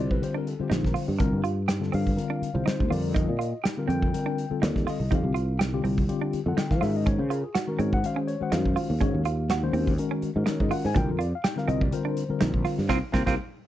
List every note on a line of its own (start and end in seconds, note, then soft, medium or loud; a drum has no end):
0.00 0.21 C2 medium
0.00 0.15 D3 medium
0.00 0.16 G3 medium
0.00 0.14 C4 medium
0.00 0.16 C4 medium
0.00 0.16 F4 medium
0.00 0.16 C5 medium
0.00 0.10 D5 medium
0.11 0.22 B4 medium
0.11 kick medium
0.21 0.52 D3 medium
0.21 0.53 G3 medium
0.21 0.53 C4 soft
0.21 0.53 F4 medium
0.21 0.53 G4 medium
0.21 0.36 C5 medium
0.21 closed hi-hat medium
0.34 0.52 D4 medium
0.34 0.47 A#4 medium
0.47 0.60 A4 medium
0.47 closed hi-hat medium
0.59 1.10 D3 medium
0.59 1.10 G3 medium
0.59 1.10 C4 medium
0.59 0.73 F4 medium
0.59 0.72 G4 medium
0.59 1.11 C5 medium
0.59 muted fretless electric bass stroke soft
0.70 0.94 A#1 medium
0.70 0.88 D#4 medium
0.70 snare loud
0.70 closed hi-hat medium
0.75 0.86 F4 medium
0.84 0.93 A#4 medium
0.84 kick medium
0.84 snare soft
0.94 1.12 F4 medium
0.94 open hi-hat medium
1.08 1.19 G2 medium
1.19 1.32 C2 medium
1.19 1.40 D3 medium
1.19 1.40 G3 medium
1.19 1.40 C4 medium
1.19 1.37 D4 medium
1.19 1.41 F4 medium
1.19 1.41 A#4 loud
1.19 kick loud
1.19 closed hi-hat medium
1.32 1.90 G2 medium
1.43 1.50 F4 soft
1.43 1.62 F4 medium
1.43 closed hi-hat medium
1.68 1.86 G4 medium
1.68 snare loud
1.68 closed hi-hat medium
1.80 2.11 D3 medium
1.80 2.11 G3 medium
1.80 2.11 C4 medium
1.80 2.12 F4 medium
1.80 2.12 A4 medium
1.80 snare soft
1.92 2.17 G2 medium
1.92 2.10 C4 medium
1.92 2.64 F5 loud
1.92 open hi-hat medium
2.07 kick medium
2.15 2.48 D3 medium
2.15 2.48 G3 medium
2.15 2.48 C4 medium
2.15 2.48 F4 medium
2.15 2.48 A#4 medium
2.15 closed hi-hat medium
2.30 2.48 D4 medium
2.42 muted fretless electric bass stroke soft
2.42 closed hi-hat medium
2.53 2.66 C2 medium
2.53 2.87 D3 medium
2.53 2.88 G3 medium
2.53 2.88 C4 medium
2.53 2.89 F4 medium
2.53 2.67 C5 medium
2.66 2.84 D#4 medium
2.66 2.91 C5 medium
2.66 muted fretless electric bass stroke soft
2.66 snare loud
2.66 closed hi-hat medium
2.80 2.91 D#2 medium
2.80 kick medium
2.89 3.27 F2 medium
2.89 3.31 D3 medium
2.89 3.31 G3 medium
2.89 3.31 C4 medium
2.89 3.32 F4 medium
2.89 3.08 F4 medium
2.89 3.32 A#4 medium
2.89 3.15 D5 medium
2.89 open hi-hat medium
3.14 3.33 D#4 medium
3.14 3.62 D#5 medium
3.14 kick loud
3.14 closed hi-hat medium
3.29 3.52 A#2 medium
3.39 3.46 F4 soft
3.39 3.57 F4 medium
3.39 3.47 A#4 soft
3.39 closed hi-hat medium
3.64 3.82 G4 medium
3.64 snare loud
3.64 closed hi-hat medium
3.76 4.07 D3 medium
3.76 4.07 G3 medium
3.76 4.08 C4 medium
3.76 4.08 F4 medium
3.76 4.08 A#4 medium
3.88 4.12 F2 medium
3.88 4.06 C4 medium
3.88 4.59 G5 loud
3.88 closed hi-hat medium
4.02 kick medium
4.12 4.44 D3 medium
4.12 4.44 G3 medium
4.12 4.44 C4 medium
4.12 4.44 F4 medium
4.12 4.45 A#4 medium
4.12 closed hi-hat medium
4.26 4.44 D4 medium
4.38 closed hi-hat medium
4.49 5.01 D3 medium
4.49 5.01 G3 medium
4.49 5.01 C4 medium
4.49 5.01 F4 medium
4.49 5.01 A4 medium
4.49 muted fretless electric bass stroke soft
4.62 4.86 D#2 loud
4.62 4.80 D#4 medium
4.62 4.88 D5 medium
4.62 snare loud
4.62 closed hi-hat medium
4.76 kick medium
4.76 snare soft
4.87 5.04 F4 medium
4.87 5.12 D#5 medium
4.87 snare soft
4.87 open hi-hat medium
5.00 5.11 C2 medium
5.10 5.23 F2 medium
5.10 5.31 D3 medium
5.10 5.32 G3 medium
5.10 5.32 C4 medium
5.10 5.29 D#4 medium
5.10 5.32 F4 medium
5.10 5.32 G4 medium
5.10 kick loud
5.10 closed hi-hat medium
5.15 5.59 F5 medium
5.23 5.81 C2 medium
5.34 5.52 F4 medium
5.34 5.42 F4 soft
5.34 5.43 A#4 soft
5.34 closed hi-hat medium
5.59 5.77 G4 medium
5.59 snare loud
5.59 closed hi-hat medium
5.73 6.03 D3 medium
5.73 6.03 G3 medium
5.73 6.03 C4 medium
5.73 6.04 F4 medium
5.73 6.03 G4 medium
5.84 6.08 C2 medium
5.84 6.02 C4 medium
5.84 open hi-hat medium
5.98 kick medium
6.07 6.39 D3 medium
6.07 6.39 G3 medium
6.07 6.39 C4 medium
6.07 6.40 F4 medium
6.07 6.40 G4 medium
6.07 closed hi-hat medium
6.22 6.39 D4 medium
6.33 muted fretless electric bass stroke soft
6.33 closed hi-hat medium
6.46 6.56 F2 medium
6.46 6.82 D3 medium
6.46 6.82 G3 medium
6.46 6.82 C4 medium
6.46 6.83 F4 medium
6.46 6.83 A4 medium
6.46 6.58 F#5 medium
6.57 6.75 D#4 medium
6.57 6.71 G5 medium
6.57 muted fretless electric bass stroke soft
6.57 snare loud
6.57 closed hi-hat medium
6.70 6.82 F3 medium
6.70 6.82 F5 medium
6.70 kick medium
6.70 snare soft
6.81 7.18 G#2 medium
6.81 7.22 D#3 medium
6.81 7.23 G#3 medium
6.81 7.23 C#4 medium
6.81 6.99 F4 medium
6.81 7.23 F#4 medium
6.81 7.23 A#4 medium
6.81 6.95 E5 medium
6.81 snare soft
6.81 open hi-hat medium
6.97 7.07 D#5 medium
7.06 7.24 C#4 medium
7.06 7.19 C#5 medium
7.06 kick loud
7.06 closed hi-hat medium
7.19 7.42 C#3 medium
7.19 7.30 C5 medium
7.30 7.48 F4 medium
7.30 7.37 F#4 soft
7.30 7.43 A#4 medium
7.30 7.38 C#5 soft
7.30 closed hi-hat medium
7.44 7.55 G#4 medium
7.55 7.72 F#4 medium
7.55 7.66 F#4 medium
7.55 snare loud
7.55 closed hi-hat medium
7.67 7.97 D#3 medium
7.67 7.97 G#3 medium
7.67 7.98 C#4 medium
7.67 7.98 F#4 medium
7.67 7.98 A#4 medium
7.79 8.02 G#2 medium
7.79 7.96 C4 medium
7.79 7.92 C#5 medium
7.79 closed hi-hat medium
7.93 8.04 F#5 loud
7.93 kick medium
8.03 8.34 D#3 medium
8.03 8.34 G#3 medium
8.03 8.34 C#4 medium
8.03 8.35 F#4 medium
8.03 8.35 C5 medium
8.03 8.18 F5 medium
8.03 closed hi-hat medium
8.16 8.34 C#4 medium
8.16 8.29 G#4 medium
8.28 8.41 C#5 medium
8.28 closed hi-hat medium
8.40 8.91 D#3 medium
8.40 8.91 G#3 medium
8.40 8.91 C#4 medium
8.40 8.91 F#4 medium
8.40 8.92 C5 medium
8.40 8.53 F#5 medium
8.40 muted fretless electric bass stroke soft
8.52 8.75 F#2 medium
8.52 8.70 D#4 medium
8.52 9.95 F5 medium
8.52 snare loud
8.52 closed hi-hat medium
8.65 kick medium
8.76 8.94 F4 medium
8.76 open hi-hat medium
8.90 9.01 D#2 medium
9.00 9.14 G#2 medium
9.00 9.21 D#3 medium
9.00 9.21 G#3 medium
9.00 9.18 C#4 medium
9.00 9.21 C#4 medium
9.00 9.22 F#4 medium
9.00 9.22 C#5 medium
9.00 kick medium
9.00 closed hi-hat medium
9.14 9.71 D#2 medium
9.25 9.43 F4 medium
9.25 9.31 F#4 soft
9.25 9.32 C5 soft
9.25 closed hi-hat medium
9.50 9.68 F#4 medium
9.50 snare loud
9.50 closed hi-hat medium
9.62 9.92 D#3 medium
9.62 9.92 G#3 medium
9.62 9.93 C#4 medium
9.62 9.93 F#4 medium
9.62 9.93 C5 loud
9.73 9.97 D#2 medium
9.73 9.91 C4 medium
9.73 open hi-hat medium
9.87 kick medium
9.98 10.29 D#3 medium
9.98 10.29 G#3 medium
9.98 10.29 C#4 medium
9.98 10.29 F#4 medium
9.98 10.29 A#4 medium
9.98 closed hi-hat medium
10.11 10.29 C#4 medium
10.22 muted fretless electric bass stroke soft
10.22 closed hi-hat medium
10.35 10.47 G#2 medium
10.35 10.86 D#3 medium
10.35 10.86 G#3 medium
10.35 10.86 C#4 medium
10.35 10.86 F#4 medium
10.35 10.86 A#4 medium
10.46 10.64 D#4 medium
10.46 10.61 C#5 medium
10.46 muted fretless electric bass stroke soft
10.46 snare loud
10.46 closed hi-hat medium
10.60 10.71 G#2 medium
10.60 10.72 D#5 medium
10.60 kick medium
10.71 10.88 F4 medium
10.71 10.84 F#5 medium
10.71 open hi-hat medium
10.85 10.97 G#2 medium
10.85 10.96 G#5 medium
10.85 snare soft
10.94 11.08 C2 medium
10.94 11.15 D3 medium
10.94 11.15 G3 medium
10.94 11.16 C4 medium
10.94 11.12 D4 medium
10.94 11.16 F4 medium
10.94 11.10 A#4 medium
10.94 11.09 G5 loud
10.94 kick loud
10.94 closed hi-hat medium
11.09 11.32 F2 medium
11.09 11.21 A#4 medium
11.18 11.25 F4 soft
11.18 11.36 F4 medium
11.18 11.26 G4 soft
11.18 11.32 D5 medium
11.18 closed hi-hat medium
11.35 11.45 F5 medium
11.44 11.61 G4 medium
11.44 11.57 G5 medium
11.44 snare loud
11.44 closed hi-hat medium
11.56 11.86 D3 medium
11.56 11.86 G3 medium
11.56 11.86 C4 medium
11.56 11.87 F4 medium
11.56 11.87 A#4 medium
11.56 11.69 F5 medium
11.56 snare soft
11.68 11.91 C2 medium
11.68 11.85 C4 medium
11.68 11.81 D#5 loud
11.68 closed hi-hat medium
11.81 11.92 D5 medium
11.81 kick medium
11.91 12.22 D3 medium
11.91 12.22 G3 medium
11.91 12.23 C4 medium
11.91 12.23 F4 medium
11.91 12.23 A#4 medium
11.91 12.86 C5 medium
11.91 closed hi-hat medium
12.05 12.22 D4 medium
12.17 closed hi-hat medium
12.28 12.79 D3 medium
12.28 12.79 G3 medium
12.28 12.79 C4 medium
12.28 12.80 F4 medium
12.28 12.80 A#4 medium
12.28 muted fretless electric bass stroke soft
12.41 12.64 A#1 loud
12.41 12.58 D#4 medium
12.41 snare loud
12.41 closed hi-hat medium
12.54 kick medium
12.65 12.82 F4 medium
12.65 snare soft
12.65 open hi-hat medium
12.78 12.89 G2 medium
12.78 snare soft
12.89 12.99 C2 loud
12.89 12.97 A#3 medium
12.89 12.98 A#3 medium
12.89 12.97 C4 medium
12.89 12.98 C4 loud
12.89 12.97 F4 medium
12.89 12.98 F4 loud
12.89 12.97 A#4 loud
12.89 12.97 C5 loud
12.89 12.98 F5 loud
12.89 kick medium
12.89 snare medium
13.12 13.23 C2 medium
13.12 13.21 A#3 loud
13.12 13.22 A#3 medium
13.12 13.21 C4 loud
13.12 13.22 C4 medium
13.12 13.22 F4 medium
13.12 13.22 A#4 medium
13.12 13.22 C5 medium
13.12 13.21 F5 medium
13.12 kick medium
13.12 snare medium
13.25 13.35 C2 medium
13.25 13.33 A#3 medium
13.25 13.34 A#3 medium
13.25 13.33 C4 medium
13.25 13.34 C4 loud
13.25 13.33 F4 medium
13.25 13.34 F4 loud
13.25 13.34 A#4 loud
13.25 13.34 C5 medium
13.25 13.34 F5 loud
13.25 kick medium
13.25 snare medium